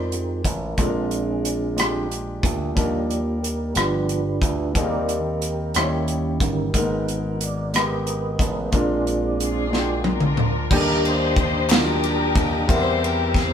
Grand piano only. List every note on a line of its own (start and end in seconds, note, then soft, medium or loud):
0.00 0.78 G#3 medium
0.00 0.80 D#4 medium
0.00 0.79 F4 medium
0.00 0.80 C5 medium
0.00 0.75 D5 medium
0.78 1.74 A#2 soft
0.78 1.70 G#3 medium
0.78 1.71 D4 medium
0.78 1.71 F4 medium
0.78 0.86 A4 medium
0.87 1.75 A#4 medium
1.77 2.69 G#3 medium
1.77 2.70 D4 medium
1.77 2.70 F4 medium
1.77 2.70 G4 medium
2.75 3.72 D#3 soft
2.75 3.68 G3 medium
2.75 3.68 D4 medium
2.75 3.69 D#4 medium
2.75 3.69 A#4 medium
3.74 4.71 G2 soft
3.74 4.67 G3 soft
3.74 4.68 D4 soft
3.74 4.68 F4 soft
3.74 4.68 B4 soft
4.75 5.72 D#3 medium
4.75 5.67 G3 medium
4.75 5.68 C4 medium
4.75 5.68 D#4 medium
4.75 4.83 G#4 medium
4.84 5.72 A#4 medium
5.75 6.71 D#3 medium
5.75 6.67 G3 medium
5.75 6.68 D#4 medium
5.75 6.68 E4 soft
5.75 5.83 C5 medium
5.83 6.71 C#5 medium
6.74 7.70 G#2 medium
6.74 7.66 G#3 medium
6.74 6.81 A#3 soft
6.74 7.67 D#4 medium
6.74 7.67 A#4 medium
6.82 7.70 B3 medium
7.73 8.65 G#3 soft
7.73 8.66 B3 soft
7.73 8.66 D#4 soft
7.73 8.67 G4 medium
8.72 9.68 A#2 soft
8.72 9.64 G#3 medium
8.72 9.64 D4 medium
8.72 9.65 F4 medium
8.72 9.65 A#4 medium
9.71 10.63 G#3 medium
9.71 10.63 D4 medium
9.71 10.64 F4 medium
9.71 9.79 F#4 medium
9.79 10.67 G5 medium
10.71 11.66 D#3 medium
10.71 11.62 G3 medium
10.71 11.63 D4 medium
10.71 11.63 G4 medium
10.71 10.78 A4 medium
10.79 11.66 A#4 medium
11.71 12.62 D#3 medium
11.71 11.77 F#3 soft
11.71 12.62 D4 medium
11.71 12.63 F4 medium
11.77 12.65 G3 medium
12.68 13.53 E3 medium
12.68 13.53 G3 medium
12.68 13.53 C4 medium
12.68 13.53 E4 medium
12.68 13.53 A#4 medium